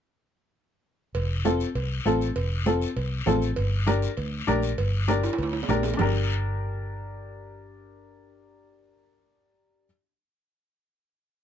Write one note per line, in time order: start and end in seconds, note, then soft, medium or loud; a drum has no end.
1.15 1.63 F1 medium
1.15 cowbell loud
1.15 high conga soft
1.15 long guiro medium
1.45 1.66 C4 medium
1.45 1.66 F4 medium
1.45 1.66 A4 medium
1.45 high conga medium
1.45 short guiro medium
1.60 short guiro medium
1.75 1.99 C2 medium
1.75 cowbell medium
1.75 high conga soft
1.75 long guiro medium
2.05 2.30 A1 medium
2.05 2.27 C4 medium
2.05 2.27 F4 medium
2.05 2.27 A4 medium
2.05 high conga medium
2.05 short guiro medium
2.21 short guiro medium
2.36 2.84 F1 medium
2.36 cowbell loud
2.36 high conga soft
2.36 long guiro medium
2.66 2.87 C4 medium
2.66 2.87 F4 medium
2.66 2.88 A4 medium
2.66 high conga medium
2.66 short guiro medium
2.82 short guiro medium
2.96 3.21 C2 loud
2.96 cowbell medium
2.96 high conga soft
2.96 long guiro medium
3.26 3.51 A1 loud
3.26 3.48 C4 medium
3.26 3.48 F4 medium
3.26 3.48 A4 medium
3.26 high conga medium
3.26 low conga medium
3.26 low timbale medium
3.26 short guiro medium
3.42 short guiro medium
3.56 4.06 G1 loud
3.56 cowbell loud
3.56 high conga soft
3.56 long guiro medium
3.87 4.08 D4 medium
3.87 4.08 G4 medium
3.87 4.09 A#4 medium
3.87 high conga loud
3.87 short guiro medium
4.02 short guiro medium
4.17 4.42 D2 loud
4.17 cowbell medium
4.17 high conga soft
4.17 long guiro medium
4.47 4.72 A#1 loud
4.47 4.69 D4 medium
4.47 4.69 G4 medium
4.47 4.69 A#4 medium
4.47 high conga medium
4.47 short guiro medium
4.63 short guiro medium
4.78 5.27 G1 medium
4.78 cowbell loud
4.78 high conga soft
4.78 long guiro medium
5.08 5.29 D4 medium
5.08 5.29 G4 medium
5.08 5.30 A#4 medium
5.08 high conga loud
5.08 short guiro medium
5.23 high timbale medium
5.23 short guiro medium
5.33 high timbale loud
5.38 5.63 D2 loud
5.38 cowbell medium
5.38 high conga soft
5.38 long guiro medium
5.43 high timbale medium
5.53 high timbale medium
5.63 low timbale medium
5.68 5.93 A#1 loud
5.68 5.90 D4 medium
5.68 5.90 G4 medium
5.68 5.90 A#4 medium
5.68 high conga medium
5.68 low conga medium
5.68 short guiro medium
5.73 low timbale medium
5.83 low timbale medium
5.83 short guiro medium
5.94 9.84 D4 medium
5.94 low timbale medium
5.99 9.85 G1 medium
5.99 9.85 G4 medium
5.99 9.86 A#4 medium
5.99 low conga loud
5.99 low timbale loud
5.99 long guiro loud